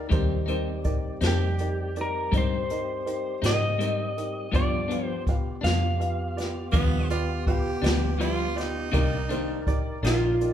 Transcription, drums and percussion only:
0.11 kick medium
0.11 closed hi-hat medium
0.48 closed hi-hat soft
0.84 kick medium
0.84 closed hi-hat soft
1.21 snare medium
1.21 closed hi-hat medium
1.59 closed hi-hat soft
1.96 closed hi-hat soft
2.33 kick medium
2.33 closed hi-hat medium
2.70 closed hi-hat medium
3.07 closed hi-hat medium
3.43 snare medium
3.43 closed hi-hat medium
3.80 closed hi-hat medium
4.18 closed hi-hat medium
4.53 kick medium
4.53 closed hi-hat medium
4.91 closed hi-hat medium
5.27 kick medium
5.27 closed hi-hat medium
5.64 snare medium
5.64 closed hi-hat medium
6.01 closed hi-hat soft
6.38 snare soft
6.38 closed hi-hat medium
6.73 kick medium
6.73 closed hi-hat medium
7.10 closed hi-hat medium
7.47 kick medium
7.47 closed hi-hat soft
7.84 snare loud
7.84 closed hi-hat medium
8.21 closed hi-hat medium
8.58 snare soft
8.58 closed hi-hat medium
8.94 kick medium
8.94 closed hi-hat medium
9.30 closed hi-hat soft
9.67 kick medium
9.67 closed hi-hat medium
10.04 snare loud
10.04 closed hi-hat medium
10.41 closed hi-hat medium

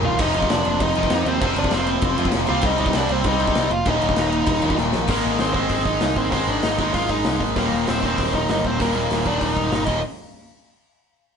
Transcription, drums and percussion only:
0.03 floor tom loud
0.19 kick loud
0.19 splash medium
0.19 crash medium
0.34 crash medium
0.42 kick medium
0.50 snare loud
0.50 crash medium
0.65 crash medium
0.80 kick loud
0.80 crash medium
0.95 crash medium
1.03 kick loud
1.10 snare loud
1.10 crash medium
1.26 crash medium
1.41 kick loud
1.41 crash medium
1.56 crash medium
1.64 kick medium
1.71 snare loud
1.71 crash medium
1.87 crash medium
2.02 kick loud
2.02 crash medium
2.18 crash medium
2.25 kick medium
2.32 snare loud
2.32 crash medium
2.47 crash medium
2.61 kick loud
2.61 crash loud
2.78 crash medium
2.86 kick medium
2.93 snare loud
2.93 crash medium
3.09 crash medium
3.24 kick loud
3.24 crash medium
3.40 crash medium
3.47 kick loud
3.55 snare loud
3.55 crash medium
3.71 crash medium
3.85 kick loud
3.85 crash medium
4.02 crash medium
4.09 kick loud
4.16 snare loud
4.16 crash medium
4.32 crash medium
4.46 kick loud
4.46 crash medium
4.62 crash medium
4.70 kick medium
4.77 snare medium
4.93 snare loud
5.08 kick loud
5.08 crash loud
5.39 snare loud
5.39 open hi-hat soft
5.54 kick medium
5.69 kick medium
5.69 open hi-hat medium
5.86 kick medium
6.00 snare loud
6.00 open hi-hat medium
6.16 kick medium
6.32 kick medium
6.32 open hi-hat medium
6.63 snare loud
6.63 open hi-hat medium
6.79 kick medium
6.94 kick loud
6.94 open hi-hat medium
7.09 kick medium
7.24 snare loud
7.24 open hi-hat medium
7.41 kick medium
7.56 kick loud
7.56 open hi-hat medium
7.87 snare loud
7.87 open hi-hat medium
8.03 kick medium
8.18 kick medium
8.18 open hi-hat medium
8.33 kick medium
8.49 snare loud
8.49 open hi-hat medium
8.65 kick medium
8.80 kick medium
8.80 open hi-hat medium
9.11 snare medium
9.11 open hi-hat medium
9.26 kick medium
9.41 kick medium
9.41 open hi-hat medium
9.57 kick medium
9.72 snare loud
9.72 open hi-hat medium
9.86 kick medium
9.86 crash medium

